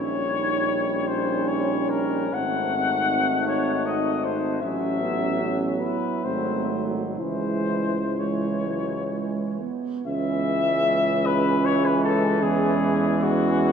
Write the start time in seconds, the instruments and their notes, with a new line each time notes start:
Already playing: tuba A#1, trombone G3, euphonium C#4, french horn section D#4, flugelhorn C#5
0.70 euphonium C#4
1.08 flugelhorn C5
1.48 flugelhorn C#5
1.90 flugelhorn A#4
2.32 tuba G#1, trombone A3, euphonium C4, french horn section C4, flugelhorn F#5
2.75 euphonium D#4
3.48 flugelhorn C#5
3.86 flugelhorn D#5
4.24 flugelhorn C5
4.62 tuba A1, trombone F#3, euphonium C#4, french horn section C#4, flugelhorn E5
5.01 euphonium B3
5.39 french horn section B3, euphonium C#4
5.80 euphonium E4, flugelhorn B4
6.24 tuba G#1, trombone F#3, french horn section A3, euphonium C4, flugelhorn C5
6.72 euphonium D#4
7.19 tuba C#2, trombone E3, french horn section G#3, euphonium E4, flugelhorn C5
8.19 trombone E3, french horn section G#3, flugelhorn C#5
8.66 french horn section F#3
9.12 french horn section G#3
9.60 french horn section B3
10.05 tuba C#2, trombone E3, euphonium G#3, french horn section C#4, flugelhorn E5
11.26 flugelhorn B4
11.65 flugelhorn C#5
11.86 flugelhorn B4
12.04 flugelhorn A4
12.42 tuba E2, flugelhorn G#4
13.23 flugelhorn F#4